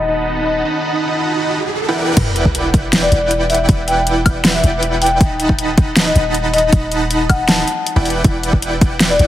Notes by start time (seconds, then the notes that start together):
Already playing: D#1, riser
0.00 D#5
0.08 D#4 D#5 F#5 A5 B5
0.46 D#5
0.65 D#4 D#5 F#5 A5 B5
1.88 E4 B4 D5 F#5 G5
2.17 E1, kick, closed hi-hat, crash, sub drop
2.36 closed hi-hat
2.45 kick
2.55 closed hi-hat
2.74 kick, closed hi-hat
2.93 snare, closed hi-hat
3.02 D5
3.12 E1 E4 B4 D5 F#5 G5, closed hi-hat
3.31 closed hi-hat
3.50 E5, open hi-hat
3.54 closed hi-hat
3.69 E1 E4 B4 D5 F#5 G5, kick, closed hi-hat
3.88 G5, closed hi-hat
4.07 closed hi-hat
4.26 kick, closed hi-hat, high woodblock
4.45 snare, closed hi-hat
4.54 E5
4.64 E1 E4 B4 D5 F#5 G5, closed hi-hat
4.83 closed hi-hat
5.02 G5, open hi-hat
5.06 closed hi-hat
5.11 G5
5.21 D#1 D#4 F#5, kick, closed hi-hat
5.40 closed hi-hat
5.49 kick
5.59 closed hi-hat
5.78 kick, closed hi-hat
5.96 snare, closed hi-hat
6.06 D#5
6.16 D#1 D#4 D#5 F#5 A5 B5, closed hi-hat
6.35 closed hi-hat
6.54 D#5, open hi-hat
6.58 closed hi-hat
6.73 D#1 D#4 D#5 F#5 A5 B5, kick, closed hi-hat
6.92 closed hi-hat
7.11 closed hi-hat
7.29 F#5, kick, closed hi-hat, high woodblock
7.48 A5, snare, closed hi-hat
7.67 closed hi-hat
7.87 closed hi-hat
7.96 E1 E4 B4 D5 F#5 G5
8.05 open hi-hat
8.10 closed hi-hat
8.24 E1 E4 D5 F#5, kick, closed hi-hat
8.43 closed hi-hat
8.53 kick
8.62 closed hi-hat
8.81 kick, closed hi-hat
9.00 snare, closed hi-hat
9.10 D5
9.19 E1 E4 B4 D5 F#5 G5, closed hi-hat